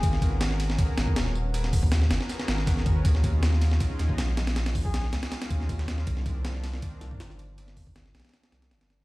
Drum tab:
RD |x---x---x---x---x---x---x-------|x-------x---x---x---x---x---x---|x---x---x---x---x---x---x---x-x-|x-x-----x---x-x-x-x-x---x---x---|
HH |------------o-------------------|--x-o-------------x-------------|------------o-------------------|--x-o-------------x-------------|
TB |x---x---x-------x---x---x---x---|x---x---x---x---x---x---x---x---|x---x---x-------x---x---x---x---|x---x---x---x---x---x---x---x---|
SD |--o-----o-o---o-----o---o-o-----|--o-----o-o-o-o-o-o-o-o-o-o-----|--o-----o-o-o-o-----o---o-o-o-o-|o-o-----o-o-o-o-o-o---o---o-o-o-|
BD |o---o-----------o-----o---------|----o-o-----------------o---o---|o---o-----------o-----o---------|----o-o-------------o---o-------|

RD |x---x---x---x---x---x---x---x---|x-------x---xxxxx-x-x-x-x-x-x---|
HH |------------o-------------------|--x-o-------------x-------------|
TB |x---x---x-------x---x---x---x---|x---x---x---x---x---x---x---x---|
SD |--o-----o-o-o-o-----o---o-o-----|--o-----o-o-ooooo-o-o-o-o-o-o-o-|
BD |o---o-----------o-----o---------|----o-o-------------------------|